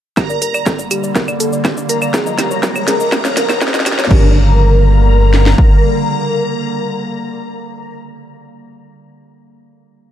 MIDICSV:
0, 0, Header, 1, 8, 480
1, 0, Start_track
1, 0, Key_signature, -2, "minor"
1, 0, Tempo, 491803
1, 168, Time_signature, 4, 2, 24, 8
1, 9876, End_track
2, 0, Start_track
2, 0, Title_t, "Analog polysynth"
2, 0, Program_c, 0, 90
2, 168, Note_on_c, 0, 82, 103
2, 794, Note_off_c, 0, 82, 0
2, 1847, Note_on_c, 0, 82, 108
2, 3914, Note_off_c, 0, 82, 0
2, 4008, Note_on_c, 0, 82, 103
2, 7829, Note_off_c, 0, 82, 0
2, 9876, End_track
3, 0, Start_track
3, 0, Title_t, "Analog polysynth"
3, 0, Program_c, 1, 90
3, 167, Note_on_c, 1, 70, 104
3, 794, Note_off_c, 1, 70, 0
3, 1847, Note_on_c, 1, 70, 104
3, 3914, Note_off_c, 1, 70, 0
3, 4008, Note_on_c, 1, 70, 104
3, 7829, Note_off_c, 1, 70, 0
3, 9876, End_track
4, 0, Start_track
4, 0, Title_t, "Synth arpeggio sound"
4, 0, Program_c, 2, 84
4, 168, Note_on_c, 2, 67, 81
4, 279, Note_off_c, 2, 67, 0
4, 290, Note_on_c, 2, 74, 77
4, 397, Note_off_c, 2, 74, 0
4, 407, Note_on_c, 2, 70, 78
4, 482, Note_off_c, 2, 70, 0
4, 530, Note_on_c, 2, 74, 75
4, 637, Note_off_c, 2, 74, 0
4, 647, Note_on_c, 2, 69, 103
4, 722, Note_off_c, 2, 69, 0
4, 770, Note_on_c, 2, 74, 74
4, 841, Note_off_c, 2, 74, 0
4, 887, Note_on_c, 2, 67, 78
4, 999, Note_off_c, 2, 67, 0
4, 1010, Note_on_c, 2, 74, 75
4, 1117, Note_off_c, 2, 74, 0
4, 1127, Note_on_c, 2, 70, 83
4, 1202, Note_off_c, 2, 70, 0
4, 1250, Note_on_c, 2, 74, 70
4, 1357, Note_off_c, 2, 74, 0
4, 1367, Note_on_c, 2, 69, 99
4, 1442, Note_off_c, 2, 69, 0
4, 1490, Note_on_c, 2, 74, 76
4, 1562, Note_off_c, 2, 74, 0
4, 1607, Note_on_c, 2, 67, 85
4, 1719, Note_off_c, 2, 67, 0
4, 1730, Note_on_c, 2, 74, 77
4, 1837, Note_off_c, 2, 74, 0
4, 1847, Note_on_c, 2, 70, 74
4, 1922, Note_off_c, 2, 70, 0
4, 1970, Note_on_c, 2, 74, 75
4, 2077, Note_off_c, 2, 74, 0
4, 2087, Note_on_c, 2, 68, 102
4, 2162, Note_off_c, 2, 68, 0
4, 2210, Note_on_c, 2, 75, 76
4, 2281, Note_off_c, 2, 75, 0
4, 2327, Note_on_c, 2, 67, 76
4, 2439, Note_off_c, 2, 67, 0
4, 2449, Note_on_c, 2, 73, 73
4, 2557, Note_off_c, 2, 73, 0
4, 2567, Note_on_c, 2, 70, 80
4, 2642, Note_off_c, 2, 70, 0
4, 2690, Note_on_c, 2, 73, 75
4, 2797, Note_off_c, 2, 73, 0
4, 2807, Note_on_c, 2, 68, 104
4, 2882, Note_off_c, 2, 68, 0
4, 2930, Note_on_c, 2, 75, 78
4, 3001, Note_off_c, 2, 75, 0
4, 3047, Note_on_c, 2, 67, 84
4, 3159, Note_off_c, 2, 67, 0
4, 3170, Note_on_c, 2, 73, 76
4, 3277, Note_off_c, 2, 73, 0
4, 3287, Note_on_c, 2, 70, 82
4, 3362, Note_off_c, 2, 70, 0
4, 3410, Note_on_c, 2, 73, 75
4, 3517, Note_off_c, 2, 73, 0
4, 3528, Note_on_c, 2, 68, 102
4, 3602, Note_off_c, 2, 68, 0
4, 3651, Note_on_c, 2, 75, 78
4, 3722, Note_off_c, 2, 75, 0
4, 3768, Note_on_c, 2, 67, 78
4, 3879, Note_off_c, 2, 67, 0
4, 3891, Note_on_c, 2, 73, 74
4, 3997, Note_off_c, 2, 73, 0
4, 4008, Note_on_c, 2, 67, 99
4, 4232, Note_off_c, 2, 67, 0
4, 9876, End_track
5, 0, Start_track
5, 0, Title_t, "Ambient pad"
5, 0, Program_c, 3, 92
5, 168, Note_on_c, 3, 50, 85
5, 168, Note_on_c, 3, 55, 76
5, 168, Note_on_c, 3, 58, 95
5, 2069, Note_off_c, 3, 50, 0
5, 2069, Note_off_c, 3, 55, 0
5, 2087, Note_on_c, 3, 49, 90
5, 2087, Note_on_c, 3, 53, 78
5, 3970, Note_off_c, 3, 58, 0
5, 3989, Note_off_c, 3, 49, 0
5, 3989, Note_off_c, 3, 53, 0
5, 4007, Note_on_c, 3, 55, 79
5, 4008, Note_on_c, 3, 50, 92
5, 4008, Note_on_c, 3, 58, 96
5, 7828, Note_off_c, 3, 55, 0
5, 7829, Note_off_c, 3, 50, 0
5, 7829, Note_off_c, 3, 58, 0
5, 9876, End_track
6, 0, Start_track
6, 0, Title_t, "Analog synth bass"
6, 0, Program_c, 4, 38
6, 407, Note_on_c, 4, 31, 100
6, 591, Note_off_c, 4, 31, 0
6, 887, Note_on_c, 4, 26, 82
6, 1071, Note_off_c, 4, 26, 0
6, 1367, Note_on_c, 4, 31, 92
6, 1460, Note_off_c, 4, 31, 0
6, 1489, Note_on_c, 4, 31, 93
6, 1670, Note_off_c, 4, 31, 0
6, 1846, Note_on_c, 4, 33, 106
6, 2030, Note_off_c, 4, 33, 0
6, 2327, Note_on_c, 4, 34, 102
6, 2510, Note_off_c, 4, 34, 0
6, 2807, Note_on_c, 4, 37, 85
6, 2990, Note_off_c, 4, 37, 0
6, 3288, Note_on_c, 4, 34, 100
6, 3381, Note_off_c, 4, 34, 0
6, 3410, Note_on_c, 4, 34, 89
6, 3591, Note_off_c, 4, 34, 0
6, 3768, Note_on_c, 4, 34, 89
6, 3951, Note_off_c, 4, 34, 0
6, 4008, Note_on_c, 4, 31, 103
6, 5409, Note_off_c, 4, 31, 0
6, 9876, End_track
7, 0, Start_track
7, 0, Title_t, "Riser"
7, 0, Program_c, 5, 103
7, 168, Note_on_c, 5, 60, 75
7, 4008, Note_off_c, 5, 60, 0
7, 9876, End_track
8, 0, Start_track
8, 0, Title_t, "Drums"
8, 168, Note_on_c, 9, 36, 112
8, 168, Note_on_c, 9, 38, 45
8, 168, Note_on_c, 9, 75, 47
8, 168, Note_on_c, 9, 82, 65
8, 265, Note_off_c, 9, 36, 0
8, 266, Note_off_c, 9, 38, 0
8, 266, Note_off_c, 9, 75, 0
8, 266, Note_off_c, 9, 82, 0
8, 290, Note_on_c, 9, 82, 43
8, 388, Note_off_c, 9, 82, 0
8, 408, Note_on_c, 9, 42, 97
8, 408, Note_on_c, 9, 82, 66
8, 506, Note_off_c, 9, 42, 0
8, 506, Note_off_c, 9, 82, 0
8, 531, Note_on_c, 9, 75, 49
8, 531, Note_on_c, 9, 82, 43
8, 629, Note_off_c, 9, 75, 0
8, 629, Note_off_c, 9, 82, 0
8, 647, Note_on_c, 9, 36, 109
8, 648, Note_on_c, 9, 38, 51
8, 648, Note_on_c, 9, 82, 67
8, 745, Note_off_c, 9, 36, 0
8, 746, Note_off_c, 9, 38, 0
8, 746, Note_off_c, 9, 82, 0
8, 771, Note_on_c, 9, 82, 47
8, 869, Note_off_c, 9, 82, 0
8, 888, Note_on_c, 9, 42, 103
8, 888, Note_on_c, 9, 75, 52
8, 888, Note_on_c, 9, 82, 67
8, 985, Note_off_c, 9, 42, 0
8, 985, Note_off_c, 9, 75, 0
8, 985, Note_off_c, 9, 82, 0
8, 1011, Note_on_c, 9, 82, 47
8, 1108, Note_off_c, 9, 82, 0
8, 1127, Note_on_c, 9, 36, 110
8, 1128, Note_on_c, 9, 38, 57
8, 1128, Note_on_c, 9, 82, 68
8, 1225, Note_off_c, 9, 36, 0
8, 1226, Note_off_c, 9, 38, 0
8, 1226, Note_off_c, 9, 82, 0
8, 1251, Note_on_c, 9, 75, 47
8, 1251, Note_on_c, 9, 82, 47
8, 1348, Note_off_c, 9, 75, 0
8, 1348, Note_off_c, 9, 82, 0
8, 1368, Note_on_c, 9, 42, 105
8, 1368, Note_on_c, 9, 82, 73
8, 1466, Note_off_c, 9, 42, 0
8, 1466, Note_off_c, 9, 82, 0
8, 1491, Note_on_c, 9, 82, 42
8, 1588, Note_off_c, 9, 82, 0
8, 1607, Note_on_c, 9, 36, 119
8, 1608, Note_on_c, 9, 38, 66
8, 1608, Note_on_c, 9, 75, 49
8, 1608, Note_on_c, 9, 82, 66
8, 1705, Note_off_c, 9, 36, 0
8, 1705, Note_off_c, 9, 38, 0
8, 1705, Note_off_c, 9, 75, 0
8, 1705, Note_off_c, 9, 82, 0
8, 1730, Note_on_c, 9, 82, 45
8, 1828, Note_off_c, 9, 82, 0
8, 1848, Note_on_c, 9, 42, 100
8, 1848, Note_on_c, 9, 82, 67
8, 1945, Note_off_c, 9, 42, 0
8, 1945, Note_off_c, 9, 82, 0
8, 1970, Note_on_c, 9, 75, 50
8, 1970, Note_on_c, 9, 82, 46
8, 2068, Note_off_c, 9, 75, 0
8, 2068, Note_off_c, 9, 82, 0
8, 2087, Note_on_c, 9, 36, 120
8, 2088, Note_on_c, 9, 38, 71
8, 2088, Note_on_c, 9, 82, 62
8, 2185, Note_off_c, 9, 36, 0
8, 2185, Note_off_c, 9, 38, 0
8, 2185, Note_off_c, 9, 82, 0
8, 2210, Note_on_c, 9, 82, 45
8, 2308, Note_off_c, 9, 82, 0
8, 2328, Note_on_c, 9, 38, 76
8, 2328, Note_on_c, 9, 42, 106
8, 2328, Note_on_c, 9, 75, 48
8, 2328, Note_on_c, 9, 82, 69
8, 2425, Note_off_c, 9, 38, 0
8, 2425, Note_off_c, 9, 42, 0
8, 2425, Note_off_c, 9, 75, 0
8, 2425, Note_off_c, 9, 82, 0
8, 2451, Note_on_c, 9, 82, 46
8, 2548, Note_off_c, 9, 82, 0
8, 2567, Note_on_c, 9, 36, 117
8, 2568, Note_on_c, 9, 38, 82
8, 2568, Note_on_c, 9, 82, 66
8, 2665, Note_off_c, 9, 36, 0
8, 2665, Note_off_c, 9, 38, 0
8, 2665, Note_off_c, 9, 82, 0
8, 2690, Note_on_c, 9, 75, 50
8, 2690, Note_on_c, 9, 82, 46
8, 2788, Note_off_c, 9, 75, 0
8, 2788, Note_off_c, 9, 82, 0
8, 2807, Note_on_c, 9, 38, 87
8, 2807, Note_on_c, 9, 42, 115
8, 2807, Note_on_c, 9, 82, 68
8, 2905, Note_off_c, 9, 38, 0
8, 2905, Note_off_c, 9, 42, 0
8, 2905, Note_off_c, 9, 82, 0
8, 2930, Note_on_c, 9, 82, 47
8, 3028, Note_off_c, 9, 82, 0
8, 3047, Note_on_c, 9, 36, 114
8, 3048, Note_on_c, 9, 38, 93
8, 3048, Note_on_c, 9, 75, 53
8, 3048, Note_on_c, 9, 82, 67
8, 3145, Note_off_c, 9, 36, 0
8, 3145, Note_off_c, 9, 38, 0
8, 3145, Note_off_c, 9, 75, 0
8, 3145, Note_off_c, 9, 82, 0
8, 3171, Note_on_c, 9, 38, 86
8, 3171, Note_on_c, 9, 82, 47
8, 3268, Note_off_c, 9, 38, 0
8, 3268, Note_off_c, 9, 82, 0
8, 3288, Note_on_c, 9, 38, 95
8, 3288, Note_on_c, 9, 42, 112
8, 3288, Note_on_c, 9, 82, 69
8, 3385, Note_off_c, 9, 38, 0
8, 3385, Note_off_c, 9, 42, 0
8, 3385, Note_off_c, 9, 82, 0
8, 3411, Note_on_c, 9, 38, 83
8, 3411, Note_on_c, 9, 75, 48
8, 3411, Note_on_c, 9, 82, 43
8, 3508, Note_off_c, 9, 38, 0
8, 3508, Note_off_c, 9, 75, 0
8, 3508, Note_off_c, 9, 82, 0
8, 3528, Note_on_c, 9, 36, 117
8, 3528, Note_on_c, 9, 38, 101
8, 3528, Note_on_c, 9, 82, 70
8, 3589, Note_off_c, 9, 38, 0
8, 3589, Note_on_c, 9, 38, 90
8, 3625, Note_off_c, 9, 36, 0
8, 3626, Note_off_c, 9, 82, 0
8, 3651, Note_off_c, 9, 38, 0
8, 3651, Note_on_c, 9, 38, 89
8, 3651, Note_on_c, 9, 82, 44
8, 3709, Note_off_c, 9, 38, 0
8, 3709, Note_on_c, 9, 38, 90
8, 3749, Note_off_c, 9, 82, 0
8, 3769, Note_off_c, 9, 38, 0
8, 3769, Note_on_c, 9, 38, 112
8, 3769, Note_on_c, 9, 42, 108
8, 3769, Note_on_c, 9, 75, 53
8, 3769, Note_on_c, 9, 82, 72
8, 3830, Note_off_c, 9, 38, 0
8, 3830, Note_on_c, 9, 38, 96
8, 3866, Note_off_c, 9, 42, 0
8, 3866, Note_off_c, 9, 75, 0
8, 3866, Note_off_c, 9, 82, 0
8, 3891, Note_off_c, 9, 38, 0
8, 3891, Note_on_c, 9, 38, 98
8, 3891, Note_on_c, 9, 82, 46
8, 3950, Note_off_c, 9, 38, 0
8, 3950, Note_on_c, 9, 38, 97
8, 3989, Note_off_c, 9, 82, 0
8, 4008, Note_on_c, 9, 36, 112
8, 4008, Note_on_c, 9, 49, 89
8, 4047, Note_off_c, 9, 38, 0
8, 4106, Note_off_c, 9, 36, 0
8, 4106, Note_off_c, 9, 49, 0
8, 5209, Note_on_c, 9, 38, 64
8, 5306, Note_off_c, 9, 38, 0
8, 5332, Note_on_c, 9, 38, 77
8, 5429, Note_off_c, 9, 38, 0
8, 5449, Note_on_c, 9, 36, 86
8, 5546, Note_off_c, 9, 36, 0
8, 9876, End_track
0, 0, End_of_file